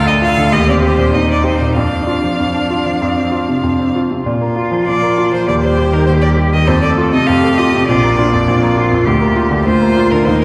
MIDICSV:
0, 0, Header, 1, 4, 480
1, 0, Start_track
1, 0, Key_signature, -2, "major"
1, 0, Tempo, 617920
1, 1374, Time_signature, 4, 2, 24, 8
1, 3783, Tempo, 598205
1, 8256, End_track
2, 0, Start_track
2, 0, Title_t, "Violin"
2, 0, Program_c, 0, 40
2, 56, Note_on_c, 0, 75, 56
2, 104, Note_off_c, 0, 75, 0
2, 174, Note_on_c, 0, 77, 69
2, 410, Note_on_c, 0, 75, 67
2, 421, Note_off_c, 0, 77, 0
2, 529, Note_off_c, 0, 75, 0
2, 537, Note_on_c, 0, 74, 55
2, 583, Note_off_c, 0, 74, 0
2, 655, Note_on_c, 0, 72, 58
2, 887, Note_on_c, 0, 75, 52
2, 899, Note_off_c, 0, 72, 0
2, 1006, Note_off_c, 0, 75, 0
2, 1017, Note_on_c, 0, 74, 51
2, 1131, Note_off_c, 0, 74, 0
2, 1135, Note_on_c, 0, 72, 51
2, 1374, Note_off_c, 0, 72, 0
2, 1381, Note_on_c, 0, 77, 51
2, 3042, Note_off_c, 0, 77, 0
2, 3782, Note_on_c, 0, 74, 60
2, 4122, Note_off_c, 0, 74, 0
2, 4158, Note_on_c, 0, 72, 50
2, 4269, Note_off_c, 0, 72, 0
2, 4274, Note_on_c, 0, 74, 60
2, 4322, Note_off_c, 0, 74, 0
2, 4385, Note_on_c, 0, 72, 56
2, 4637, Note_on_c, 0, 70, 55
2, 4649, Note_off_c, 0, 72, 0
2, 4735, Note_off_c, 0, 70, 0
2, 4740, Note_on_c, 0, 72, 59
2, 4791, Note_off_c, 0, 72, 0
2, 4860, Note_on_c, 0, 74, 55
2, 4924, Note_off_c, 0, 74, 0
2, 5117, Note_on_c, 0, 75, 58
2, 5230, Note_on_c, 0, 72, 62
2, 5242, Note_off_c, 0, 75, 0
2, 5341, Note_off_c, 0, 72, 0
2, 5346, Note_on_c, 0, 74, 61
2, 5410, Note_off_c, 0, 74, 0
2, 5600, Note_on_c, 0, 75, 62
2, 5707, Note_on_c, 0, 77, 72
2, 5719, Note_off_c, 0, 75, 0
2, 5953, Note_on_c, 0, 75, 65
2, 5965, Note_off_c, 0, 77, 0
2, 6186, Note_off_c, 0, 75, 0
2, 6191, Note_on_c, 0, 74, 65
2, 6888, Note_off_c, 0, 74, 0
2, 7616, Note_on_c, 0, 72, 66
2, 7992, Note_on_c, 0, 70, 52
2, 8004, Note_off_c, 0, 72, 0
2, 8098, Note_on_c, 0, 72, 67
2, 8110, Note_off_c, 0, 70, 0
2, 8220, Note_off_c, 0, 72, 0
2, 8230, Note_on_c, 0, 70, 50
2, 8256, Note_off_c, 0, 70, 0
2, 8256, End_track
3, 0, Start_track
3, 0, Title_t, "Cello"
3, 0, Program_c, 1, 42
3, 0, Note_on_c, 1, 69, 60
3, 413, Note_on_c, 1, 67, 55
3, 425, Note_off_c, 1, 69, 0
3, 882, Note_off_c, 1, 67, 0
3, 887, Note_on_c, 1, 63, 55
3, 1379, Note_on_c, 1, 62, 42
3, 1391, Note_off_c, 1, 63, 0
3, 3073, Note_off_c, 1, 62, 0
3, 3303, Note_on_c, 1, 65, 48
3, 4264, Note_on_c, 1, 67, 53
3, 4276, Note_off_c, 1, 65, 0
3, 5226, Note_off_c, 1, 67, 0
3, 5231, Note_on_c, 1, 69, 54
3, 5701, Note_on_c, 1, 67, 57
3, 5713, Note_off_c, 1, 69, 0
3, 6191, Note_off_c, 1, 67, 0
3, 6196, Note_on_c, 1, 65, 54
3, 6430, Note_off_c, 1, 65, 0
3, 6443, Note_on_c, 1, 62, 52
3, 6508, Note_off_c, 1, 62, 0
3, 6667, Note_on_c, 1, 65, 63
3, 7139, Note_on_c, 1, 67, 52
3, 7151, Note_off_c, 1, 65, 0
3, 7627, Note_on_c, 1, 65, 53
3, 7639, Note_off_c, 1, 67, 0
3, 8102, Note_off_c, 1, 65, 0
3, 8107, Note_on_c, 1, 63, 46
3, 8256, Note_off_c, 1, 63, 0
3, 8256, End_track
4, 0, Start_track
4, 0, Title_t, "Grand piano"
4, 0, Program_c, 2, 0
4, 0, Control_c, 2, 64, 127
4, 0, Note_on_c, 2, 38, 43
4, 0, Note_on_c, 2, 50, 36
4, 0, Note_on_c, 2, 62, 35
4, 0, Note_on_c, 2, 65, 39
4, 55, Note_off_c, 2, 62, 0
4, 55, Note_on_c, 2, 62, 41
4, 171, Note_off_c, 2, 65, 0
4, 171, Note_on_c, 2, 65, 36
4, 246, Note_off_c, 2, 62, 0
4, 289, Note_off_c, 2, 50, 0
4, 289, Note_on_c, 2, 50, 34
4, 363, Note_off_c, 2, 65, 0
4, 399, Note_off_c, 2, 38, 0
4, 405, Note_on_c, 2, 39, 46
4, 410, Note_off_c, 2, 50, 0
4, 428, Control_c, 2, 64, 0
4, 524, Note_on_c, 2, 60, 37
4, 566, Control_c, 2, 64, 127
4, 639, Note_on_c, 2, 67, 37
4, 715, Note_off_c, 2, 60, 0
4, 759, Note_on_c, 2, 46, 33
4, 833, Note_off_c, 2, 67, 0
4, 869, Note_off_c, 2, 39, 0
4, 880, Note_on_c, 2, 39, 36
4, 953, Note_off_c, 2, 46, 0
4, 1004, Note_on_c, 2, 60, 28
4, 1116, Note_on_c, 2, 67, 34
4, 1201, Note_off_c, 2, 60, 0
4, 1248, Note_on_c, 2, 46, 27
4, 1320, Note_off_c, 2, 67, 0
4, 1358, Note_off_c, 2, 39, 0
4, 1369, Note_on_c, 2, 41, 40
4, 1373, Note_off_c, 2, 46, 0
4, 1391, Control_c, 2, 64, 0
4, 1489, Note_on_c, 2, 62, 27
4, 1528, Control_c, 2, 64, 127
4, 1608, Note_on_c, 2, 65, 28
4, 1688, Note_off_c, 2, 62, 0
4, 1734, Note_on_c, 2, 53, 27
4, 1808, Note_off_c, 2, 65, 0
4, 1849, Note_off_c, 2, 41, 0
4, 1860, Note_on_c, 2, 41, 28
4, 1933, Note_off_c, 2, 53, 0
4, 1973, Note_on_c, 2, 62, 28
4, 2100, Note_on_c, 2, 65, 24
4, 2173, Note_off_c, 2, 62, 0
4, 2220, Note_on_c, 2, 53, 27
4, 2296, Note_off_c, 2, 65, 0
4, 2331, Note_off_c, 2, 41, 0
4, 2342, Note_on_c, 2, 41, 35
4, 2344, Note_off_c, 2, 53, 0
4, 2361, Control_c, 2, 64, 0
4, 2458, Note_on_c, 2, 60, 25
4, 2505, Control_c, 2, 64, 127
4, 2577, Note_on_c, 2, 65, 26
4, 2656, Note_off_c, 2, 60, 0
4, 2706, Note_on_c, 2, 48, 26
4, 2775, Note_off_c, 2, 65, 0
4, 2809, Note_off_c, 2, 41, 0
4, 2820, Note_on_c, 2, 41, 27
4, 2900, Note_off_c, 2, 48, 0
4, 2947, Note_on_c, 2, 60, 23
4, 3074, Note_on_c, 2, 65, 26
4, 3141, Note_off_c, 2, 60, 0
4, 3189, Note_on_c, 2, 48, 24
4, 3264, Note_off_c, 2, 65, 0
4, 3290, Note_off_c, 2, 41, 0
4, 3308, Note_on_c, 2, 46, 40
4, 3309, Note_off_c, 2, 48, 0
4, 3325, Control_c, 2, 64, 0
4, 3428, Note_on_c, 2, 58, 31
4, 3453, Control_c, 2, 64, 127
4, 3544, Note_on_c, 2, 65, 32
4, 3617, Note_off_c, 2, 58, 0
4, 3662, Note_on_c, 2, 53, 30
4, 3735, Note_off_c, 2, 65, 0
4, 3775, Note_off_c, 2, 46, 0
4, 3787, Note_on_c, 2, 46, 34
4, 3855, Note_off_c, 2, 53, 0
4, 3907, Note_on_c, 2, 58, 34
4, 4033, Note_on_c, 2, 65, 33
4, 4101, Note_off_c, 2, 58, 0
4, 4152, Note_on_c, 2, 53, 32
4, 4225, Note_off_c, 2, 65, 0
4, 4257, Note_off_c, 2, 46, 0
4, 4272, Note_off_c, 2, 53, 0
4, 4272, Note_on_c, 2, 39, 41
4, 4286, Control_c, 2, 64, 0
4, 4391, Note_on_c, 2, 55, 34
4, 4423, Control_c, 2, 64, 127
4, 4515, Note_on_c, 2, 67, 36
4, 4585, Note_off_c, 2, 55, 0
4, 4636, Note_on_c, 2, 51, 33
4, 4707, Note_off_c, 2, 67, 0
4, 4744, Note_off_c, 2, 39, 0
4, 4756, Note_on_c, 2, 39, 37
4, 4827, Note_off_c, 2, 51, 0
4, 4879, Note_on_c, 2, 55, 31
4, 4990, Note_on_c, 2, 67, 38
4, 5069, Note_off_c, 2, 55, 0
4, 5115, Note_on_c, 2, 51, 32
4, 5184, Note_off_c, 2, 67, 0
4, 5221, Note_off_c, 2, 39, 0
4, 5231, Note_on_c, 2, 41, 49
4, 5234, Note_off_c, 2, 51, 0
4, 5249, Control_c, 2, 64, 0
4, 5353, Note_on_c, 2, 57, 36
4, 5373, Control_c, 2, 64, 127
4, 5474, Note_on_c, 2, 65, 37
4, 5546, Note_off_c, 2, 57, 0
4, 5598, Note_on_c, 2, 48, 37
4, 5667, Note_off_c, 2, 65, 0
4, 5710, Note_off_c, 2, 41, 0
4, 5722, Note_on_c, 2, 41, 40
4, 5790, Note_off_c, 2, 48, 0
4, 5838, Note_on_c, 2, 57, 38
4, 5963, Note_on_c, 2, 65, 37
4, 6030, Note_off_c, 2, 57, 0
4, 6086, Note_on_c, 2, 48, 37
4, 6153, Note_off_c, 2, 65, 0
4, 6187, Note_off_c, 2, 41, 0
4, 6201, Note_on_c, 2, 34, 47
4, 6202, Note_off_c, 2, 48, 0
4, 6213, Control_c, 2, 64, 0
4, 6325, Note_on_c, 2, 58, 36
4, 6331, Control_c, 2, 64, 127
4, 6442, Note_on_c, 2, 65, 42
4, 6510, Note_off_c, 2, 58, 0
4, 6558, Note_on_c, 2, 41, 39
4, 6627, Note_off_c, 2, 65, 0
4, 6665, Note_off_c, 2, 34, 0
4, 6677, Note_on_c, 2, 34, 39
4, 6744, Note_off_c, 2, 41, 0
4, 6795, Note_on_c, 2, 58, 38
4, 6915, Note_on_c, 2, 65, 40
4, 6980, Note_off_c, 2, 58, 0
4, 7029, Note_on_c, 2, 41, 35
4, 7099, Note_off_c, 2, 65, 0
4, 7131, Note_off_c, 2, 34, 0
4, 7145, Note_off_c, 2, 41, 0
4, 7151, Note_on_c, 2, 38, 52
4, 7158, Control_c, 2, 64, 0
4, 7264, Control_c, 2, 64, 127
4, 7267, Note_on_c, 2, 58, 35
4, 7387, Note_on_c, 2, 65, 37
4, 7456, Note_off_c, 2, 58, 0
4, 7505, Note_on_c, 2, 50, 35
4, 7575, Note_off_c, 2, 65, 0
4, 7618, Note_off_c, 2, 38, 0
4, 7630, Note_on_c, 2, 38, 37
4, 7694, Note_off_c, 2, 50, 0
4, 7751, Note_on_c, 2, 58, 37
4, 7874, Note_on_c, 2, 65, 36
4, 7938, Note_off_c, 2, 58, 0
4, 7996, Note_on_c, 2, 50, 34
4, 8060, Note_off_c, 2, 65, 0
4, 8092, Note_off_c, 2, 38, 0
4, 8109, Note_off_c, 2, 50, 0
4, 8113, Note_on_c, 2, 39, 44
4, 8117, Control_c, 2, 64, 0
4, 8248, Control_c, 2, 64, 127
4, 8256, Note_off_c, 2, 39, 0
4, 8256, End_track
0, 0, End_of_file